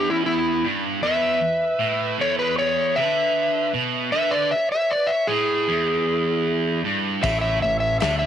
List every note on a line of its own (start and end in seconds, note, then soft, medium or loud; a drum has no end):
0.00 0.63 E2 loud
0.10 0.27 C#4 medium
0.10 0.25 E4 medium
0.26 0.64 B3 medium
0.26 0.64 E4 medium
0.64 1.02 G2 medium
1.02 1.40 E2 loud
1.02 2.16 B4 medium
1.02 2.16 E5 loud
1.41 1.73 E2 medium
1.79 2.18 A2 medium
2.18 2.95 E2 medium
2.18 2.38 A4 medium
2.18 2.39 C#5 medium
2.39 2.59 G#4 medium
2.39 2.58 B4 medium
2.58 2.97 G#4 medium
2.58 2.96 C#5 medium
2.96 3.73 D3 medium
2.96 3.72 B4 medium
2.96 3.72 E5 medium
3.74 4.12 B2 medium
4.12 4.51 D3 loud
4.12 4.32 B4 medium
4.12 4.32 E5 loud
4.31 4.51 D5 medium
4.36 4.53 B4 medium
4.51 4.71 E5 medium
4.57 4.73 C#5 medium
4.72 4.91 E5 medium
4.76 4.92 C#5 medium
4.91 5.10 D5 medium
4.96 5.12 B4 medium
5.07 5.27 E5 medium
5.12 5.30 C#5 medium
5.27 5.67 A2 medium
5.27 6.81 E4 medium
5.27 6.79 G#4 medium
5.68 6.83 E2 loud
6.85 7.22 G2 medium
7.22 7.60 A1 medium
7.22 7.60 A2 loud
7.22 7.41 C#5 medium
7.22 7.40 E5 loud
7.22 kick loud
7.22 open hi-hat medium
7.41 7.61 C#5 medium
7.41 7.61 E5 medium
7.62 7.99 A1 medium
7.62 7.93 A2 medium
7.62 7.80 C#5 medium
7.62 7.79 E5 medium
7.80 7.99 C#5 medium
7.80 8.00 E5 medium
8.00 8.26 D2 medium
8.00 8.26 D3 loud
8.00 8.18 C#5 medium
8.00 8.18 E5 medium
8.00 snare medium
8.00 open hi-hat medium
8.19 8.26 C#5 medium
8.19 8.26 E5 medium